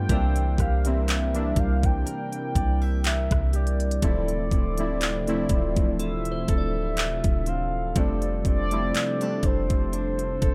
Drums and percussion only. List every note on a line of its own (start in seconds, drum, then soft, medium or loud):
0.09 kick loud
0.09 closed hi-hat medium
0.36 closed hi-hat medium
0.58 kick medium
0.58 cross-stick medium
0.58 closed hi-hat medium
0.85 closed hi-hat medium
1.08 clap loud
1.08 closed hi-hat medium
1.35 closed hi-hat soft
1.56 kick loud
1.56 closed hi-hat medium
1.83 kick loud
1.83 closed hi-hat soft
2.07 closed hi-hat medium
2.33 closed hi-hat medium
2.55 kick medium
2.55 closed hi-hat medium
3.04 clap loud
3.04 closed hi-hat medium
3.31 kick medium
3.31 cross-stick loud
3.31 closed hi-hat soft
3.53 closed hi-hat soft
3.53 open hi-hat medium
3.67 closed hi-hat soft
3.80 closed hi-hat medium
3.91 closed hi-hat medium
4.02 kick loud
4.02 closed hi-hat medium
4.28 closed hi-hat soft
4.51 kick medium
4.51 closed hi-hat soft
4.78 closed hi-hat medium
5.01 clap loud
5.01 closed hi-hat medium
5.27 closed hi-hat soft
5.49 kick loud
5.49 closed hi-hat medium
5.76 kick loud
5.76 closed hi-hat soft
6.00 closed hi-hat medium
6.25 closed hi-hat medium
6.48 kick medium
6.48 closed hi-hat medium
6.97 clap loud
6.97 closed hi-hat medium
7.24 kick medium
7.24 closed hi-hat medium
7.46 closed hi-hat medium
7.96 kick loud
7.96 closed hi-hat medium
8.22 closed hi-hat medium
8.45 kick medium
8.45 closed hi-hat medium
8.71 closed hi-hat medium
8.95 clap loud
8.95 closed hi-hat medium
9.21 closed hi-hat soft
9.43 kick loud
9.43 closed hi-hat medium
9.70 kick medium
9.70 closed hi-hat soft
9.93 closed hi-hat medium
10.19 closed hi-hat medium
10.42 kick medium
10.42 closed hi-hat medium